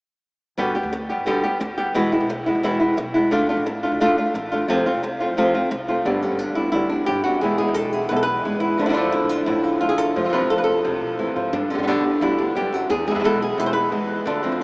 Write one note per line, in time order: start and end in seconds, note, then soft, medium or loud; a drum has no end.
0.57 0.78 G1 medium
0.57 0.74 B2 medium
0.57 0.74 D3 medium
0.57 0.75 G3 medium
0.57 0.75 B3 medium
0.57 0.74 G4 medium
0.75 0.92 G3 soft
0.75 0.92 B3 soft
0.75 0.91 G4 medium
0.83 1.10 D2 medium
0.93 muted nylon-string guitar stroke medium
1.09 1.25 G3 soft
1.09 1.26 B3 soft
1.09 1.26 G4 medium
1.18 1.51 G1 medium
1.26 1.43 B2 medium
1.26 1.43 D3 medium
1.26 1.43 G3 medium
1.26 1.43 B3 medium
1.26 1.42 G4 medium
1.43 1.60 G3 soft
1.43 1.60 B3 soft
1.43 1.60 G4 medium
1.60 1.87 D2 medium
1.60 muted nylon-string guitar stroke medium
1.78 1.95 G3 medium
1.78 1.94 B3 medium
1.78 1.94 G4 medium
1.94 2.15 E1 medium
1.94 2.11 B2 medium
1.94 2.11 E3 medium
1.94 2.12 G#3 medium
1.94 2.12 B3 medium
1.94 2.11 E4 medium
2.12 2.29 G#3 soft
2.12 2.29 B3 soft
2.12 2.29 E4 medium
2.21 2.47 B1 medium
2.29 muted nylon-string guitar stroke medium
2.46 2.63 G#3 soft
2.46 2.63 B3 medium
2.46 2.63 E4 medium
2.55 2.88 E1 medium
2.63 2.80 B2 medium
2.63 2.80 E3 medium
2.63 2.80 G#3 medium
2.63 2.79 B3 medium
2.63 2.79 E4 medium
2.80 2.97 G#3 soft
2.80 2.97 B3 soft
2.80 2.97 E4 medium
2.97 3.24 B1 medium
2.97 muted nylon-string guitar stroke medium
3.14 3.31 G#3 medium
3.14 3.31 B3 medium
3.14 3.31 E4 medium
3.31 3.52 D2 loud
3.31 3.48 D3 medium
3.31 3.48 A3 medium
3.31 3.48 D4 medium
3.31 3.48 F4 medium
3.49 3.65 A3 soft
3.49 3.65 D4 medium
3.49 3.65 F4 medium
3.57 3.84 A1 medium
3.66 muted nylon-string guitar stroke medium
3.83 4.00 A3 soft
3.83 4.00 D4 soft
3.83 4.00 F4 medium
3.92 4.25 D2 medium
4.00 4.17 D3 medium
4.00 4.17 A3 medium
4.00 4.17 D4 medium
4.00 4.17 F4 medium
4.18 4.34 A3 soft
4.18 4.34 D4 soft
4.18 4.34 F4 medium
4.34 4.61 A1 medium
4.34 muted nylon-string guitar stroke medium
4.52 4.68 A3 soft
4.52 4.69 D4 medium
4.52 4.68 F4 medium
4.68 4.89 F2 medium
4.68 4.85 C3 medium
4.68 4.85 F3 medium
4.68 4.86 A3 medium
4.68 4.86 C4 medium
4.68 4.85 F4 medium
4.86 5.02 A3 soft
4.86 5.03 C4 medium
4.86 5.02 F4 medium
4.94 5.21 C2 medium
5.03 muted nylon-string guitar stroke medium
5.20 5.37 A3 soft
5.20 5.37 C4 medium
5.20 5.37 F4 medium
5.28 5.62 F2 medium
5.37 5.54 C3 medium
5.37 5.54 F3 medium
5.37 5.54 A3 medium
5.37 5.54 C4 medium
5.37 5.53 F4 medium
5.54 5.70 A3 soft
5.54 5.70 C4 medium
5.54 5.70 F4 medium
5.71 5.98 C2 medium
5.71 muted nylon-string guitar stroke medium
5.88 6.06 A3 medium
5.88 6.05 C4 medium
5.88 6.05 F4 medium
6.05 6.25 G1 medium
6.05 6.72 G2 medium
6.05 6.22 B2 medium
6.05 6.22 D3 medium
6.05 6.22 G3 medium
6.05 6.21 B3 medium
6.05 6.22 D4 medium
6.05 6.20 G4 medium
6.22 7.43 D3 medium
6.22 6.38 G3 soft
6.22 6.39 B3 soft
6.22 6.39 C#4 medium
6.22 6.39 G4 soft
6.31 6.45 G1 medium
6.39 6.88 D4 medium
6.39 muted nylon-string guitar stroke medium
6.49 6.69 D2 medium
6.55 6.73 G3 soft
6.55 6.73 B3 soft
6.55 6.71 E4 medium
6.55 6.73 G4 soft
6.72 7.01 D2 medium
6.72 7.07 G2 medium
6.72 6.90 B2 medium
6.72 6.90 D3 medium
6.72 6.91 G3 medium
6.72 6.90 B3 medium
6.72 7.06 E4 medium
6.72 6.89 G4 medium
6.89 7.07 G3 soft
6.89 7.07 B3 soft
6.89 7.42 D4 medium
6.89 7.07 G4 soft
7.06 7.35 G1 medium
7.06 7.25 G2 medium
7.06 7.23 G4 medium
7.06 muted nylon-string guitar stroke soft
7.24 7.42 F#2 medium
7.24 7.42 G3 soft
7.24 7.42 B3 soft
7.24 7.41 F#4 medium
7.24 7.42 G4 soft
7.41 7.63 E1 medium
7.41 8.10 E2 medium
7.41 7.59 B2 medium
7.41 7.59 E3 medium
7.41 7.59 G#3 medium
7.41 7.59 G#3 soft
7.41 7.59 B3 medium
7.41 8.78 B3 soft
7.41 7.58 E4 medium
7.41 8.59 E4 soft
7.41 7.57 G#4 medium
7.58 8.44 G#3 medium
7.58 7.75 G#3 soft
7.58 7.76 B3 soft
7.58 7.76 E4 soft
7.58 7.74 G#4 medium
7.68 7.82 E1 medium
7.74 7.93 A4 medium
7.74 muted nylon-string guitar stroke medium
7.85 8.05 B1 medium
7.93 8.10 G#3 soft
7.93 8.11 B3 soft
7.93 8.10 E4 soft
7.93 8.08 G#4 medium
8.09 8.38 B1 medium
8.09 8.80 E2 medium
8.09 8.27 B2 medium
8.09 8.28 E3 medium
8.09 8.28 G#3 medium
8.09 8.28 B3 medium
8.09 8.27 E4 medium
8.09 8.16 B4 medium
8.16 8.22 A4 medium
8.23 8.60 B4 loud
8.28 8.45 G#3 soft
8.28 8.45 B3 soft
8.28 8.44 E4 soft
8.45 8.72 A1 medium
8.45 8.77 G#3 medium
8.45 muted nylon-string guitar stroke medium
8.60 8.79 G#3 soft
8.60 8.79 B3 soft
8.60 8.78 E4 medium
8.60 8.79 E4 soft
8.77 9.00 D2 medium
8.77 8.86 D3 medium
8.77 10.14 D3 medium
8.77 8.96 F3 soft
8.77 8.87 A3 medium
8.77 10.15 A3 soft
8.77 8.87 D4 medium
8.77 8.89 F4 medium
8.77 8.87 F4 medium
8.86 8.91 D3 soft
8.86 8.91 A3 soft
8.86 8.92 D4 soft
8.86 8.93 D4 medium
8.86 8.89 E4 medium
8.86 8.92 F4 soft
8.90 8.95 D3 medium
8.90 8.96 A3 soft
8.90 8.96 D4 medium
8.90 9.11 E4 medium
8.90 8.97 F4 medium
8.94 9.13 D3 medium
8.94 9.82 F3 medium
8.94 9.13 A3 medium
8.94 9.29 D4 medium
8.94 9.14 D4 medium
8.94 9.14 F4 medium
9.05 9.18 D2 medium
9.12 9.47 A3 soft
9.12 9.47 D4 soft
9.12 9.45 E4 medium
9.22 9.42 A1 medium
9.29 9.62 F4 medium
9.46 9.74 A1 medium
9.46 10.14 A2 medium
9.46 9.88 E4 medium
9.46 muted nylon-string guitar stroke soft
9.63 9.79 F4 medium
9.81 10.09 E2 medium
9.81 9.98 D3 soft
9.81 9.99 A3 soft
9.81 9.98 D4 soft
9.81 10.16 F4 medium
9.81 9.97 F4 soft
9.89 9.98 G#4 medium
9.98 10.16 A3 soft
9.98 10.16 D4 soft
9.98 10.15 F4 soft
9.98 10.32 A4 medium
10.16 10.36 F2 medium
10.16 10.32 C3 medium
10.16 11.19 F3 medium
10.16 10.23 F3 medium
10.16 10.23 A3 medium
10.16 10.24 C4 medium
10.16 10.24 F4 medium
10.24 10.27 F3 soft
10.24 10.28 A3 soft
10.24 10.28 C4 soft
10.24 10.29 F4 soft
10.29 10.32 F3 medium
10.29 10.33 A3 medium
10.29 10.33 C4 medium
10.29 10.33 F4 medium
10.33 10.50 C3 medium
10.33 10.50 F3 medium
10.33 10.50 A3 medium
10.33 11.51 C4 medium
10.33 10.50 C4 medium
10.33 10.49 F4 medium
10.33 10.50 B4 medium
10.42 10.55 F2 medium
10.50 10.84 A3 soft
10.50 10.84 C4 soft
10.50 10.84 F4 soft
10.50 10.57 A4 medium
10.58 10.79 C2 medium
10.58 10.63 B4 medium
10.64 11.19 A4 medium
10.85 10.98 C2 medium
10.85 11.51 C3 medium
10.85 muted nylon-string guitar stroke soft
11.02 11.17 B2 medium
11.19 11.34 A2 medium
11.19 11.36 E3 medium
11.19 11.35 F3 soft
11.19 11.36 A3 soft
11.19 11.36 C4 soft
11.19 11.35 F4 soft
11.36 11.51 G#2 medium
11.36 11.53 F3 medium
11.36 11.53 A3 soft
11.36 11.53 C4 soft
11.36 11.52 F4 soft
11.53 11.73 G2 medium
11.53 12.54 G2 medium
11.53 11.70 D4 medium
11.53 muted nylon-string guitar stroke medium
11.70 12.20 D3 medium
11.70 11.77 D3 soft
11.70 11.78 G3 soft
11.70 11.87 C#4 medium
11.74 11.92 G2 medium
11.74 11.81 D3 soft
11.74 11.78 B3 soft
11.74 11.78 G4 soft
11.79 11.86 D3 medium
11.79 11.82 G3 medium
11.79 11.82 B3 medium
11.79 11.83 G4 medium
11.83 11.86 G3 medium
11.83 11.87 B3 medium
11.83 11.87 G4 medium
11.87 12.04 B2 medium
11.87 12.04 D3 medium
11.87 12.04 G3 medium
11.87 12.03 B3 medium
11.87 12.37 D4 medium
11.87 12.03 G4 medium
11.95 12.15 D2 medium
12.04 12.21 G3 soft
12.04 12.21 B3 soft
12.04 12.21 E4 medium
12.04 12.21 G4 soft
12.21 12.48 D2 loud
12.21 12.38 B2 medium
12.21 12.88 D3 medium
12.21 12.38 D3 medium
12.21 12.38 G3 medium
12.21 12.38 B3 medium
12.21 12.56 E4 medium
12.21 12.37 G4 medium
12.38 12.55 G3 soft
12.38 12.55 B3 soft
12.38 12.90 D4 medium
12.38 12.55 G4 soft
12.55 12.82 F#2 medium
12.55 12.72 G2 medium
12.55 12.74 G4 medium
12.55 muted nylon-string guitar stroke medium
12.72 12.89 F#2 medium
12.72 12.90 F#4 medium
12.89 13.57 E2 medium
12.89 13.10 E2 medium
12.89 13.06 G#4 medium
12.89 muted nylon-string guitar stroke medium
13.07 13.13 E3 soft
13.07 13.91 G#3 medium
13.07 13.24 G#4 medium
13.11 13.18 E3 medium
13.11 13.14 G#3 soft
13.11 13.15 B3 soft
13.11 13.15 E4 soft
13.15 13.28 E2 medium
13.15 13.18 G#3 soft
13.15 13.19 B3 medium
13.15 13.19 E4 medium
13.19 13.23 E3 medium
13.19 13.23 G#3 medium
13.19 13.24 B3 medium
13.19 13.24 E4 medium
13.24 13.40 B2 medium
13.24 13.40 E3 medium
13.24 13.40 G#3 medium
13.24 13.40 B3 medium
13.24 13.39 E4 medium
13.24 13.42 A4 loud
13.32 13.52 B1 medium
13.40 13.57 G#3 soft
13.40 13.57 B3 soft
13.40 13.57 E4 soft
13.40 13.59 G#4 medium
13.58 13.85 B1 medium
13.58 14.26 E2 medium
13.58 13.74 B2 medium
13.58 13.74 E3 medium
13.58 13.75 G#3 medium
13.58 13.74 B3 medium
13.58 13.73 E4 medium
13.58 13.66 B4 medium
13.66 13.72 C5 medium
13.73 13.91 G#3 soft
13.73 13.91 B3 soft
13.73 13.91 E4 soft
13.73 14.27 B4 medium
13.92 14.19 E2 medium
13.92 14.24 G#3 medium
13.92 muted nylon-string guitar stroke medium
14.25 14.46 D2 medium
14.25 14.63 D3 medium
14.25 14.42 D3 medium
14.25 14.43 A3 medium
14.25 14.60 D4 medium
14.25 14.42 D4 medium
14.25 14.42 F4 medium
14.43 14.63 F3 medium
14.43 14.59 A3 soft
14.43 14.63 C4 medium
14.43 14.59 D4 soft
14.43 14.59 F4 soft
14.52 14.63 D2 medium
14.60 muted nylon-string guitar stroke medium